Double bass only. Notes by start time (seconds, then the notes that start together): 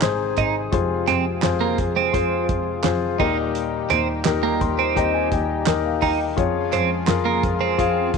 0.02 G#1
0.38 G#1
0.73 F2
1.08 F2
1.43 F2
1.78 F2
2.14 F2
2.49 F2
2.84 F2
3.20 D#2
3.90 D#2
4.26 D#2
4.61 D#2
4.96 D#2
5.32 D#2
5.67 D#2
6.02 D#2
6.37 F2
6.73 F2
7.07 F2
7.44 F2
7.79 F2
8.14 F2